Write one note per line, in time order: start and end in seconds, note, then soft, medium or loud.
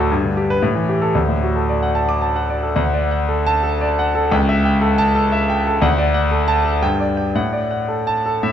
0.00 0.13 D2 medium
0.00 0.12 A2 medium
0.00 0.12 F#4 medium
0.00 0.11 A4 medium
0.11 0.60 G2 medium
0.25 0.44 D3 medium
0.37 0.57 G4 medium
0.50 0.62 B4 medium
0.62 1.13 A2 medium
0.75 0.96 E3 medium
0.89 1.10 G4 soft
1.02 1.15 A4 medium
1.15 2.72 D2 medium
1.29 1.50 A2 soft
1.43 1.64 F#4 soft
1.56 1.77 A4 soft
1.69 1.90 D5 medium
1.83 2.04 F#5 medium
1.95 2.17 A5 medium
2.09 2.30 D6 medium
2.22 2.44 A5 medium
2.36 2.57 F#5 soft
2.50 2.71 D5 soft
2.63 2.76 A4 soft
2.76 4.28 D2 medium
2.76 3.04 F#5 medium
2.93 3.22 D5 medium
3.11 3.39 F#5 medium
3.28 3.57 A4 medium
3.47 3.74 A5 medium
3.63 3.91 A4 medium
3.81 4.08 D5 medium
3.99 4.25 F#5 medium
4.15 4.32 A4 medium
4.31 5.78 C#2 medium
4.31 4.58 G5 medium
4.49 4.75 E5 medium
4.65 4.92 G5 medium
4.81 5.08 A4 medium
4.98 5.25 A5 medium
5.15 5.42 A4 medium
5.32 5.59 E5 medium
5.50 5.76 G5 medium
5.67 5.82 A4 medium
5.82 6.78 D2 medium
5.82 6.08 F#5 medium
5.98 6.24 D5 medium
6.14 6.41 F#5 medium
6.31 6.58 A4 medium
6.48 6.75 A5 medium
6.65 6.82 A4 medium
6.82 7.33 G2 medium
6.82 7.10 G5 medium
7.00 7.28 D5 medium
7.17 7.34 G5 medium
7.35 8.40 A2 medium
7.35 7.64 F#5 medium
7.53 7.81 D5 soft
7.71 7.99 F#5 soft
7.88 8.17 A4 medium
8.07 8.36 A5 medium
8.26 8.43 A4 medium
8.43 8.52 A2 medium
8.43 8.52 E5 medium